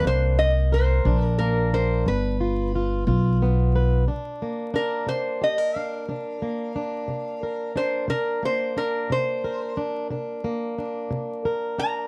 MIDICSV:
0, 0, Header, 1, 4, 480
1, 0, Start_track
1, 0, Tempo, 670841
1, 35, Time_signature, 12, 3, 24, 8
1, 8640, End_track
2, 0, Start_track
2, 0, Title_t, "Resonator guitar played with a steel bar"
2, 0, Program_c, 0, 25
2, 50, Note_on_c, 0, 72, 88
2, 277, Note_on_c, 0, 75, 82
2, 290, Note_off_c, 0, 72, 0
2, 523, Note_off_c, 0, 75, 0
2, 527, Note_on_c, 0, 72, 77
2, 892, Note_off_c, 0, 72, 0
2, 892, Note_on_c, 0, 70, 77
2, 988, Note_off_c, 0, 70, 0
2, 991, Note_on_c, 0, 70, 78
2, 1240, Note_off_c, 0, 70, 0
2, 1245, Note_on_c, 0, 72, 77
2, 1484, Note_off_c, 0, 72, 0
2, 1487, Note_on_c, 0, 71, 69
2, 2412, Note_off_c, 0, 71, 0
2, 3402, Note_on_c, 0, 70, 79
2, 3630, Note_off_c, 0, 70, 0
2, 3638, Note_on_c, 0, 72, 81
2, 3869, Note_off_c, 0, 72, 0
2, 3889, Note_on_c, 0, 75, 75
2, 4122, Note_off_c, 0, 75, 0
2, 4122, Note_on_c, 0, 77, 79
2, 5528, Note_off_c, 0, 77, 0
2, 5560, Note_on_c, 0, 72, 80
2, 5789, Note_off_c, 0, 72, 0
2, 5794, Note_on_c, 0, 70, 91
2, 6025, Note_off_c, 0, 70, 0
2, 6048, Note_on_c, 0, 72, 80
2, 6273, Note_off_c, 0, 72, 0
2, 6279, Note_on_c, 0, 70, 83
2, 6508, Note_off_c, 0, 70, 0
2, 6527, Note_on_c, 0, 72, 89
2, 6985, Note_off_c, 0, 72, 0
2, 8439, Note_on_c, 0, 82, 99
2, 8640, Note_off_c, 0, 82, 0
2, 8640, End_track
3, 0, Start_track
3, 0, Title_t, "Steel-string acoustic guitar"
3, 0, Program_c, 1, 25
3, 0, Note_on_c, 1, 58, 58
3, 0, Note_on_c, 1, 62, 55
3, 18, Note_on_c, 1, 48, 62
3, 274, Note_off_c, 1, 62, 0
3, 458, Note_off_c, 1, 48, 0
3, 518, Note_on_c, 1, 70, 65
3, 753, Note_on_c, 1, 48, 64
3, 758, Note_on_c, 1, 62, 53
3, 993, Note_off_c, 1, 58, 0
3, 1004, Note_on_c, 1, 58, 53
3, 1186, Note_off_c, 1, 48, 0
3, 1236, Note_off_c, 1, 70, 0
3, 1244, Note_on_c, 1, 70, 60
3, 1450, Note_off_c, 1, 70, 0
3, 1478, Note_on_c, 1, 43, 68
3, 1479, Note_off_c, 1, 58, 0
3, 1716, Note_off_c, 1, 62, 0
3, 1721, Note_on_c, 1, 65, 56
3, 1908, Note_off_c, 1, 43, 0
3, 1958, Note_off_c, 1, 65, 0
3, 1970, Note_on_c, 1, 65, 59
3, 2194, Note_off_c, 1, 65, 0
3, 2197, Note_on_c, 1, 43, 74
3, 2202, Note_on_c, 1, 65, 64
3, 2449, Note_on_c, 1, 59, 58
3, 2628, Note_off_c, 1, 43, 0
3, 2688, Note_on_c, 1, 71, 61
3, 2889, Note_off_c, 1, 65, 0
3, 2892, Note_off_c, 1, 71, 0
3, 2893, Note_off_c, 1, 59, 0
3, 2915, Note_on_c, 1, 48, 58
3, 2919, Note_on_c, 1, 62, 51
3, 3163, Note_on_c, 1, 58, 54
3, 3346, Note_off_c, 1, 48, 0
3, 3387, Note_off_c, 1, 62, 0
3, 3390, Note_on_c, 1, 62, 57
3, 3625, Note_on_c, 1, 48, 59
3, 3875, Note_on_c, 1, 67, 53
3, 3994, Note_off_c, 1, 67, 0
3, 3994, Note_on_c, 1, 70, 54
3, 4061, Note_off_c, 1, 48, 0
3, 4120, Note_off_c, 1, 62, 0
3, 4123, Note_on_c, 1, 62, 61
3, 4355, Note_on_c, 1, 48, 71
3, 4356, Note_off_c, 1, 62, 0
3, 4359, Note_on_c, 1, 62, 57
3, 4592, Note_off_c, 1, 58, 0
3, 4595, Note_on_c, 1, 58, 53
3, 4786, Note_off_c, 1, 48, 0
3, 4832, Note_off_c, 1, 62, 0
3, 4835, Note_on_c, 1, 62, 57
3, 5065, Note_on_c, 1, 48, 69
3, 5309, Note_off_c, 1, 70, 0
3, 5317, Note_on_c, 1, 70, 65
3, 5501, Note_off_c, 1, 48, 0
3, 5547, Note_off_c, 1, 62, 0
3, 5550, Note_on_c, 1, 62, 58
3, 5780, Note_on_c, 1, 48, 66
3, 5787, Note_off_c, 1, 62, 0
3, 5790, Note_on_c, 1, 62, 55
3, 5802, Note_off_c, 1, 70, 0
3, 6027, Note_off_c, 1, 58, 0
3, 6030, Note_on_c, 1, 58, 54
3, 6218, Note_off_c, 1, 48, 0
3, 6270, Note_off_c, 1, 62, 0
3, 6273, Note_on_c, 1, 62, 54
3, 6511, Note_on_c, 1, 48, 60
3, 6757, Note_on_c, 1, 70, 61
3, 6943, Note_off_c, 1, 48, 0
3, 6989, Note_off_c, 1, 62, 0
3, 6992, Note_on_c, 1, 62, 63
3, 7230, Note_on_c, 1, 48, 72
3, 7232, Note_off_c, 1, 62, 0
3, 7235, Note_on_c, 1, 62, 56
3, 7469, Note_off_c, 1, 58, 0
3, 7472, Note_on_c, 1, 58, 59
3, 7662, Note_off_c, 1, 48, 0
3, 7714, Note_off_c, 1, 62, 0
3, 7716, Note_on_c, 1, 62, 57
3, 7947, Note_on_c, 1, 48, 68
3, 8192, Note_off_c, 1, 70, 0
3, 8195, Note_on_c, 1, 70, 67
3, 8381, Note_off_c, 1, 48, 0
3, 8429, Note_off_c, 1, 62, 0
3, 8432, Note_on_c, 1, 62, 54
3, 8640, Note_off_c, 1, 58, 0
3, 8640, Note_off_c, 1, 62, 0
3, 8640, Note_off_c, 1, 70, 0
3, 8640, End_track
4, 0, Start_track
4, 0, Title_t, "Upright bass"
4, 0, Program_c, 2, 32
4, 32, Note_on_c, 2, 36, 79
4, 732, Note_off_c, 2, 36, 0
4, 751, Note_on_c, 2, 34, 87
4, 1451, Note_off_c, 2, 34, 0
4, 1472, Note_on_c, 2, 31, 71
4, 2172, Note_off_c, 2, 31, 0
4, 2194, Note_on_c, 2, 35, 86
4, 2892, Note_off_c, 2, 35, 0
4, 8640, End_track
0, 0, End_of_file